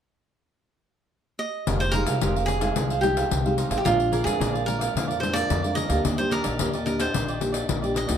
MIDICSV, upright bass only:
0, 0, Header, 1, 2, 480
1, 0, Start_track
1, 0, Key_signature, -4, "minor"
1, 0, Tempo, 545951
1, 1475, Time_signature, 4, 2, 24, 8
1, 7188, End_track
2, 0, Start_track
2, 0, Title_t, "Upright bass"
2, 0, Program_c, 0, 32
2, 1476, Note_on_c, 0, 29, 81
2, 1782, Note_off_c, 0, 29, 0
2, 1825, Note_on_c, 0, 36, 67
2, 1931, Note_off_c, 0, 36, 0
2, 1958, Note_on_c, 0, 29, 76
2, 2365, Note_off_c, 0, 29, 0
2, 2434, Note_on_c, 0, 36, 73
2, 2843, Note_off_c, 0, 36, 0
2, 2910, Note_on_c, 0, 36, 72
2, 3218, Note_off_c, 0, 36, 0
2, 3258, Note_on_c, 0, 33, 67
2, 3367, Note_off_c, 0, 33, 0
2, 3392, Note_on_c, 0, 34, 86
2, 3699, Note_off_c, 0, 34, 0
2, 3741, Note_on_c, 0, 41, 68
2, 3849, Note_off_c, 0, 41, 0
2, 3872, Note_on_c, 0, 34, 79
2, 4281, Note_off_c, 0, 34, 0
2, 4348, Note_on_c, 0, 41, 72
2, 4759, Note_off_c, 0, 41, 0
2, 4837, Note_on_c, 0, 41, 80
2, 5142, Note_off_c, 0, 41, 0
2, 5183, Note_on_c, 0, 38, 73
2, 5290, Note_off_c, 0, 38, 0
2, 5320, Note_on_c, 0, 39, 86
2, 5624, Note_off_c, 0, 39, 0
2, 5679, Note_on_c, 0, 34, 66
2, 5779, Note_off_c, 0, 34, 0
2, 5809, Note_on_c, 0, 39, 81
2, 6211, Note_off_c, 0, 39, 0
2, 6287, Note_on_c, 0, 34, 74
2, 6690, Note_off_c, 0, 34, 0
2, 6766, Note_on_c, 0, 34, 76
2, 7067, Note_off_c, 0, 34, 0
2, 7113, Note_on_c, 0, 38, 73
2, 7188, Note_off_c, 0, 38, 0
2, 7188, End_track
0, 0, End_of_file